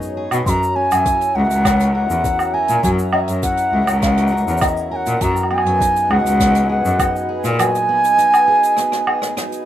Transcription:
Already playing: steel-string acoustic guitar G#2 B3 D#4 G#4, analog synth pad F#4 B4 C#5 G#5
0.02 shaker
0.17 steel-string acoustic guitar G#4
0.31 cello B2, closed hi-hat, low woodblock, shaker
0.46 cello F#2, steel-string acoustic guitar F#3, analog synth pad F#4 E5 A#5, flute A#5 C6, kick, closed hi-hat, shaker
0.63 shaker
0.76 steel-string acoustic guitar C#4, flute G#5
0.91 cello F#2, closed hi-hat, low woodblock, shaker
1.05 steel-string acoustic guitar E4, kick, closed hi-hat, shaker
1.21 closed hi-hat, shaker
1.35 cello C#2, steel-string acoustic guitar A#4, flute F#5
1.50 cello C#2, closed hi-hat, shaker
1.65 steel-string acoustic guitar C#4, kick, cross-stick, closed hi-hat, low woodblock, shaker
1.80 closed hi-hat, shaker
1.95 steel-string acoustic guitar A#4, flute F#5
2.10 cello E2, shaker
2.24 steel-string acoustic guitar E4, kick, closed hi-hat, shaker
2.39 low woodblock, shaker
2.54 steel-string acoustic guitar A#4, flute G#5
2.68 cello A#2, closed hi-hat, shaker
2.83 cello F#2, steel-string acoustic guitar F#3, flute G#5, kick, closed hi-hat, shaker
2.99 shaker
3.13 steel-string acoustic guitar C#4, flute D#5, low woodblock
3.27 cello F#2, closed hi-hat, shaker
3.43 steel-string acoustic guitar E4, flute F#5, kick, closed hi-hat, shaker
3.57 closed hi-hat, shaker
3.73 cello C#2, steel-string acoustic guitar A#4
3.87 cello C#2, closed hi-hat, low woodblock, shaker
4.02 steel-string acoustic guitar C#4, flute F#5, kick, cross-stick, closed hi-hat, shaker
4.17 closed hi-hat, shaker
4.27 shaker
4.32 steel-string acoustic guitar A#4
4.37 shaker
4.47 cello E2, shaker
4.57 closed hi-hat, low woodblock, shaker
4.62 steel-string acoustic guitar E4, flute D#5, kick, shaker
4.67 shaker
4.77 shaker
4.91 steel-string acoustic guitar A#4, flute G#5
4.96 flute F#5
5.06 cello A#2, closed hi-hat, shaker
5.21 cello F#2, steel-string acoustic guitar F#3, analog synth pad B4 D#5 G#5, flute A#5, kick, closed hi-hat, shaker
5.36 low woodblock, shaker
5.43 low woodblock
5.51 steel-string acoustic guitar B3, flute G#5, low woodblock
5.58 low woodblock
5.66 cello F#2, closed hi-hat
5.81 steel-string acoustic guitar D#4, kick, closed hi-hat, shaker
5.96 closed hi-hat, shaker
6.10 cello C#2, steel-string acoustic guitar G#4, flute F#5, low woodblock
6.25 cello C#2, closed hi-hat, shaker
6.40 steel-string acoustic guitar B3, kick, cross-stick, closed hi-hat, shaker
6.55 closed hi-hat, shaker
6.69 steel-string acoustic guitar G#4, flute F#5
6.85 cello F#2, shaker
6.99 steel-string acoustic guitar D#4, kick, closed hi-hat, low woodblock, shaker
7.16 shaker
7.29 steel-string acoustic guitar G#4
7.44 cello A#2, closed hi-hat, shaker
7.59 steel-string acoustic guitar F#3, flute G#5, closed hi-hat, low woodblock, shaker
7.75 closed hi-hat, shaker
7.89 steel-string acoustic guitar B3
8.04 closed hi-hat, shaker
8.18 steel-string acoustic guitar D#4, closed hi-hat, shaker
8.33 closed hi-hat, low woodblock, shaker
8.48 steel-string acoustic guitar G#4
8.63 closed hi-hat, shaker
8.76 steel-string acoustic guitar B3, cross-stick, closed hi-hat, shaker
8.92 cross-stick, closed hi-hat, shaker
9.07 steel-string acoustic guitar G#4, low woodblock
9.22 cross-stick, shaker
9.37 steel-string acoustic guitar D#4, cross-stick, closed hi-hat, shaker
9.52 closed hi-hat, shaker

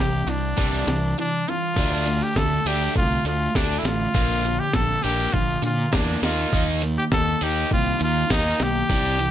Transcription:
Already playing: trumpet G4
0.00 fingered electric bass C2, overdriven electric guitar C3 E3
0.26 fingered electric bass C2, overdriven electric guitar C3 E3, trumpet D4, closed hi-hat
0.57 fingered electric bass C2, overdriven electric guitar C3 E3 G3, kick, closed hi-hat
0.87 fingered electric bass C2, overdriven electric guitar C3 E3, snare, closed hi-hat
1.18 overdriven electric guitar C3 E3, trumpet D4
1.48 overdriven electric guitar C3 E3, trumpet F4
1.76 fingered electric bass D2, overdriven electric guitar D3 A3 D4, kick, crash
2.06 overdriven electric guitar D3 A3, closed hi-hat
2.22 trumpet G4
2.36 fingered electric bass D2, overdriven electric guitar D3 A3, trumpet A4, kick, snare
2.65 fingered electric bass D2, overdriven electric guitar D3 A3 D4, trumpet G4, closed hi-hat
2.96 fingered electric bass C2, overdriven electric guitar D3 A3, trumpet F4, kick
3.25 fingered electric bass D2, overdriven electric guitar D3 A3, trumpet F4, closed hi-hat
3.55 fingered electric bass D2, overdriven electric guitar D3 A3 D4, trumpet D4, kick, snare
3.78 trumpet E4
3.83 fingered electric bass A1, overdriven electric guitar D3 A3, trumpet F4, snare, closed hi-hat
4.14 fingered electric bass A#1, overdriven electric guitar A#2 D3 A#3, kick
4.44 overdriven electric guitar A#2 D3, closed hi-hat
4.59 trumpet G4
4.73 fingered electric bass A#1, overdriven electric guitar A#2 D3, trumpet A4, kick, snare
5.03 fingered electric bass A#1, overdriven electric guitar A#2 D3 A#3, trumpet G4, closed hi-hat
5.33 fingered electric bass A#1, overdriven electric guitar A#2 D3, trumpet F4, kick
5.62 fingered electric bass A#2, overdriven electric guitar A#2 D3, trumpet F4, closed hi-hat
5.93 fingered electric bass E2, overdriven electric guitar A#2 D3 A#3, trumpet D4, kick, snare
6.22 fingered electric bass D#2, overdriven electric guitar D#3 A#3 D#4, trumpet F4, snare, closed hi-hat
6.53 fingered electric bass D#2, overdriven electric guitar D#3 A#3 D#4, kick
6.82 overdriven electric guitar D#3 A#3, closed hi-hat
6.98 trumpet G4
7.12 fingered electric bass D#2, overdriven electric guitar D#3 A#3, trumpet A4, kick, snare
7.41 fingered electric bass D#2, overdriven electric guitar D#3 A#3 D#4, trumpet G4, closed hi-hat
7.71 fingered electric bass C2, overdriven electric guitar D#3 A#3, trumpet F4, kick
8.00 fingered electric bass D#2, overdriven electric guitar D#3 A#3, trumpet F4, closed hi-hat
8.30 fingered electric bass D#2, overdriven electric guitar D#3 A#3 D#4, trumpet D#4, kick, snare
8.60 fingered electric bass B1, overdriven electric guitar D#3 A#3, trumpet G4, snare, closed hi-hat
8.90 fingered electric bass C2, overdriven electric guitar C3 E3 G3, kick
9.19 overdriven electric guitar C3 E3, closed hi-hat

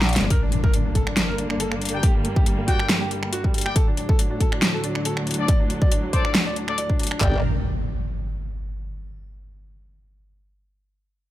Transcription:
Already playing: wobble bass A#1, string section G3 D4 D5
0.02 snare
0.09 grand piano D4, closed hi-hat
0.13 snare, closed hi-hat
0.16 closed hi-hat
0.20 wobble bass G1, grand piano D4
0.30 string section G2 D3 A#3, grand piano A#4, kick, closed hi-hat, impact
0.42 grand piano D4
0.52 grand piano D4, closed hi-hat
0.64 grand piano A#4, kick
0.74 grand piano D4, closed hi-hat
0.85 grand piano D4
0.95 grand piano A4, kick, closed hi-hat
1.07 grand piano D4, finger snap
1.17 grand piano D4, snare, closed hi-hat
1.28 grand piano A#4
1.38 grand piano D4, closed hi-hat
1.50 grand piano D4, finger snap
1.60 grand piano A4, closed hi-hat
1.72 grand piano D4, finger snap
1.81 grand piano D4, closed hi-hat
1.85 closed hi-hat
1.89 closed hi-hat
1.93 grand piano D4, brass ensemble G4 D5 G5
2.03 grand piano G4, kick, closed hi-hat
2.15 grand piano G3
2.25 grand piano G3, closed hi-hat
2.36 grand piano G4, kick
2.46 grand piano G3, closed hi-hat
2.58 grand piano G3
2.68 grand piano F#4, brass ensemble G4 D5 G5, kick, closed hi-hat
2.79 grand piano G3, finger snap
2.89 grand piano G3, snare, closed hi-hat
3.01 grand piano G4
3.11 grand piano G3, closed hi-hat
3.23 grand piano G3, finger snap
3.33 grand piano F#4, closed hi-hat
3.44 grand piano G3, kick
3.54 grand piano G3, closed hi-hat
3.58 closed hi-hat
3.61 closed hi-hat
3.66 grand piano G3, brass ensemble G4 D5 G5, finger snap
3.76 string section D2 A2 F#3, grand piano A4, kick, closed hi-hat
3.87 grand piano D4
3.97 grand piano D4, closed hi-hat
4.09 grand piano A4, kick
4.19 grand piano D4, closed hi-hat
4.31 grand piano D4
4.40 grand piano A4, kick, closed hi-hat
4.52 grand piano D4, finger snap
4.62 grand piano D4, snare, closed hi-hat
4.74 grand piano A4
4.84 grand piano D4, closed hi-hat
4.95 grand piano D4, finger snap
5.05 grand piano A4, closed hi-hat
5.17 grand piano D4, finger snap
5.27 grand piano D4, closed hi-hat
5.31 closed hi-hat
5.34 closed hi-hat
5.38 grand piano D4, brass ensemble D4 A4 D5
5.48 grand piano D5, kick, closed hi-hat
5.60 grand piano D4
5.70 grand piano D4, closed hi-hat
5.81 grand piano D5, kick
5.92 grand piano D4, closed hi-hat
6.03 grand piano D4
6.13 brass ensemble D4 A4 D5, grand piano C5, kick, closed hi-hat
6.25 grand piano D4, finger snap
6.35 grand piano D4, snare, closed hi-hat
6.46 grand piano D5
6.56 grand piano D4, closed hi-hat
6.68 grand piano D4, brass ensemble D4 A4 D5, finger snap
6.78 grand piano D5, closed hi-hat
6.89 grand piano D4, kick
6.99 grand piano D4, closed hi-hat
7.03 closed hi-hat
7.07 closed hi-hat
7.11 grand piano D4, finger snap
7.21 wobble bass G1, string section G3 D4 A#4, brass ensemble G4 D5 G5, grand piano D5, kick, clap, floor tom, impact

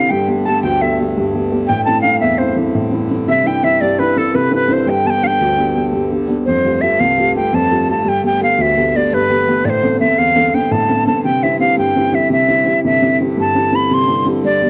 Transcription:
Already playing: flute F5
0.09 accordion G2 D3, upright piano G2, harp G5, flute G5
0.28 upright piano A3 B3 G4
0.45 upright piano A3 B3 G4, harp A5, flute A5
0.63 upright piano D2, harp G5, flute G5
0.81 upright piano A3 B3 G4, flute E5, harp E5
1.00 upright piano A3 B3 G4
1.17 upright piano G2
1.34 upright piano A3 B3 G4
1.51 upright piano A3 B3 G4
1.67 upright piano A2, flute G5, harp G5
1.85 upright piano A3 C4 E4, flute A5, harp A5
2.01 upright piano A3 C4 E4, flute F5, harp F5
2.20 upright piano E2, flute E5, harp E5
2.38 upright piano A3 C4 E4, flute C5, harp C5
2.56 upright piano A3 C4 E4
2.75 upright piano A2
2.92 upright piano A3 C4 E4
3.10 upright piano A3 C4 E4
3.28 upright piano C3, harp E5, flute E5
3.44 upright piano C4 D4 E4, flute G5, harp G5
3.63 upright piano C4 D4 E4, flute E5, harp E5
3.81 upright piano G2, flute D5, harp D5
3.99 upright piano C4 D4 E4, flute B4, harp B4
4.17 upright piano C4 D4 E4, harp A4, flute A4
4.34 upright piano C3, harp B4, flute B4
4.51 upright piano C4 D4 E4, harp B4, flute B4
4.68 upright piano C4 D4 E4, harp C5
4.73 flute C5
4.86 upright piano G2, harp G5, flute G5
5.05 upright piano B3 D4 G4, flute A5
5.10 flute G5
5.22 upright piano B3 D4 G4, flute F5
5.27 flute G5
5.41 upright piano D2
5.58 upright piano B3 D4 G4
5.75 upright piano B3 D4 G4
5.93 upright piano G2
6.10 upright piano B3 D4 G4
6.28 upright piano B3 D4 G4
6.45 upright piano F2, accordion G2 D3, flute C5
6.65 upright piano A3 F4 G4
6.81 upright piano A3 F4 G4, flute E5
7.00 upright piano C2, flute F5
7.18 upright piano A3 F4 G4
7.35 upright piano A3 F4 G4, flute G5
7.53 upright piano F2, flute A5
7.71 upright piano A3 F4 G4
7.88 upright piano A3 F4 G4, flute A5
8.05 upright piano G2, flute G5
8.23 upright piano A3 B3 G4, flute G5
8.41 upright piano A3 B3 G4, flute F5
8.58 upright piano D2, flute E5
8.77 upright piano A3 B3 G4
8.94 upright piano A3 B3 G4, flute D5
9.13 upright piano G2, flute B4
9.30 upright piano A3 B3 G4
9.47 upright piano A3 B3 G4
9.65 upright piano A2, flute D5
9.69 flute C5
9.83 upright piano B3 C4 A4
10.00 upright piano B3 C4 A4, flute E5
10.18 upright piano E2, flute F5
10.36 upright piano B3 C4 A4
10.54 upright piano B3 C4 A4, flute G5
10.71 upright piano A2, flute A5
10.88 upright piano B3 C4 A4
11.07 upright piano B3 C4 A4, flute A5
11.24 upright piano C3, flute G5
11.43 upright piano C4 E4 G4, flute E5
11.60 upright piano C4 E4 G4, flute F5
11.78 upright piano G2, flute G5
11.96 upright piano C4 E4 G4
12.13 upright piano C4 E4 G4, flute E5
12.30 upright piano C3, flute E5
12.48 upright piano C4 E4 G4
12.65 upright piano C4 E4 G4
12.81 accordion G2 D3, upright piano C3
12.86 flute E5
13.02 upright piano C4 E4 G4
13.21 upright piano C4 E4 G4
13.37 upright piano G2, flute A5
13.55 upright piano C4 E4 G4
13.72 upright piano C4 E4 G4, flute B5
13.91 upright piano C3, flute C6
14.08 upright piano C4 E4 G4
14.25 upright piano C4 E4 G4
14.44 upright piano G2, flute D5
14.62 upright piano A3 B3 G4

